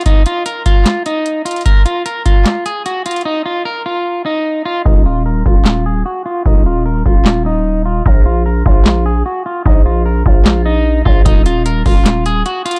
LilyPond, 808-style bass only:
\new Staff \with { instrumentName = "808-style bass" } { \clef bass \time 4/4 \key ees \minor \tempo 4 = 150 r1 | r1 | r1 | ees,,4. ees,,4. r4 |
ees,,4. ees,,2~ ees,,8 | bes,,4. bes,,4. r4 | bes,,4. bes,,2 bes,,8 | ees,,4. ees,,4. r4 | }